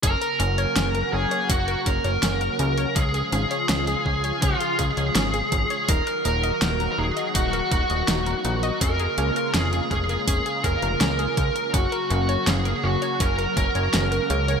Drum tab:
HH |xxxxxx-xxxxxxxxx|xxxxxx-xxxxxxxxx|xxxxxx-xxxxxxxxx|xxxxxxxxxxxxxxxx|
SD |----o-------o---|----o-------o---|----o-------o---|----o-------o---|
BD |o-------o-o-----|o-----o-o-o---o-|o-------o-o-----|o-----o-o-o---o-|

HH |xxxxxx-xxxxxxxxx|
SD |----o-------o---|
BD |o-------o-o-----|